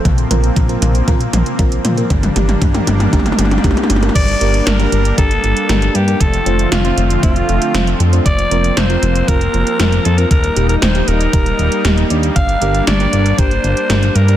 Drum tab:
CC |--------------------------------|--------------------------------|x-------------------------------|--------------------------------|
HH |x-x-x-x-x-x-x-x-x-x-x-x-x-x-x-x-|x-x-x-x-x-x-x-x-x-x-x-x-x-x-x-x-|x-x-x-x-x-x-x-x-x-x-x-x-x-x-x-x-|x-x-x-x-x-x-x-x-x-x-x-x-x-x-x-x-|
SD |--------------------------------|--------------------------------|--------o---------------o-------|--------o---------------o-------|
T2 |o---o---o---o---o---o---o---o---|o-o-o-o-o-o-o-o-oooooooooooooooo|--------------------------------|--------------------------------|
BD |o-------o-------o-------o-------|o-------o-------o-------o-------|o---------------o---------------|o---------------o---------------|

CC |--------------------------------|--------------------------------|--------------------------------|
HH |x-x-x-x-x-x-x-x-x-x-x-x-x-x-x-x-|x-x-x-x-x-x-x-x-x-x-x-x-x-x-x-x-|x-x-x-x-x-x-x-x-x-x-x-x-x-x-x-x-|
SD |--------o---------------o-------|--------o---------------o-------|--------o---------------o-------|
T2 |--------------------------------|--------------------------------|--------------------------------|
BD |o---------------o---------------|o---------------o---------------|o---------------o---------------|